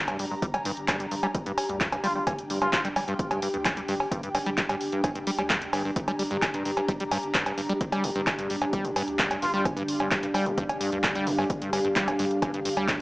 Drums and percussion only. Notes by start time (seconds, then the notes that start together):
0.08 closed hi-hat, cowbell
0.19 open hi-hat
0.42 kick, closed hi-hat
0.54 closed hi-hat, cowbell
0.65 open hi-hat
0.77 closed hi-hat
0.88 kick, clap, closed hi-hat, cowbell
1.00 closed hi-hat
1.11 open hi-hat
1.23 closed hi-hat, cowbell
1.35 kick, closed hi-hat
1.46 closed hi-hat
1.58 open hi-hat, cowbell
1.69 closed hi-hat
1.81 kick, clap, closed hi-hat
1.92 closed hi-hat, cowbell
2.04 open hi-hat
2.27 kick, closed hi-hat, cowbell
2.39 closed hi-hat
2.50 open hi-hat
2.62 closed hi-hat, cowbell
2.73 kick, clap, closed hi-hat
2.85 closed hi-hat
2.96 open hi-hat, cowbell
3.08 closed hi-hat
3.19 kick, closed hi-hat
3.31 closed hi-hat, cowbell
3.42 open hi-hat
3.54 closed hi-hat
3.65 kick, clap, closed hi-hat, cowbell
3.77 closed hi-hat
3.88 open hi-hat
4.00 cowbell
4.12 kick, closed hi-hat
4.23 closed hi-hat
4.35 open hi-hat, cowbell
4.46 closed hi-hat
4.58 kick, clap, closed hi-hat
4.69 closed hi-hat, cowbell
4.81 open hi-hat
4.92 closed hi-hat
5.04 kick, closed hi-hat, cowbell
5.15 closed hi-hat
5.27 open hi-hat
5.39 closed hi-hat, cowbell
5.50 kick, clap, closed hi-hat
5.62 closed hi-hat
5.73 open hi-hat, cowbell
5.96 kick, closed hi-hat
6.08 closed hi-hat, cowbell
6.19 open hi-hat
6.31 closed hi-hat
6.42 kick, clap, closed hi-hat, cowbell
6.54 closed hi-hat
6.65 open hi-hat
6.77 closed hi-hat, cowbell
6.88 kick, closed hi-hat
7.00 closed hi-hat
7.11 open hi-hat, cowbell
7.23 closed hi-hat
7.34 kick, clap, closed hi-hat
7.46 closed hi-hat, cowbell
7.58 open hi-hat
7.69 closed hi-hat
7.81 kick, closed hi-hat
7.92 closed hi-hat, cowbell
8.04 open hi-hat
8.16 closed hi-hat
8.27 kick, clap, closed hi-hat, cowbell
8.39 closed hi-hat
8.50 open hi-hat
8.62 closed hi-hat, cowbell
8.73 kick, closed hi-hat
8.85 closed hi-hat
8.96 open hi-hat, cowbell
9.08 closed hi-hat
9.19 kick, clap, closed hi-hat
9.31 closed hi-hat, cowbell
9.42 open hi-hat
9.65 kick, closed hi-hat, cowbell
9.77 closed hi-hat
9.88 open hi-hat
10.00 closed hi-hat, cowbell
10.11 kick, clap, closed hi-hat
10.23 closed hi-hat
10.35 open hi-hat, cowbell
10.46 closed hi-hat
10.58 kick, closed hi-hat
10.69 closed hi-hat, cowbell
10.81 open hi-hat
10.92 closed hi-hat
11.04 kick, clap, closed hi-hat, cowbell
11.15 closed hi-hat
11.27 open hi-hat
11.39 cowbell
11.50 kick, closed hi-hat
11.62 closed hi-hat
11.73 open hi-hat, cowbell
11.85 closed hi-hat
11.96 kick, clap, closed hi-hat
12.08 closed hi-hat, cowbell
12.19 open hi-hat
12.31 closed hi-hat
12.42 kick, closed hi-hat, cowbell
12.54 closed hi-hat
12.65 open hi-hat
12.77 closed hi-hat, cowbell
12.88 kick, clap, closed hi-hat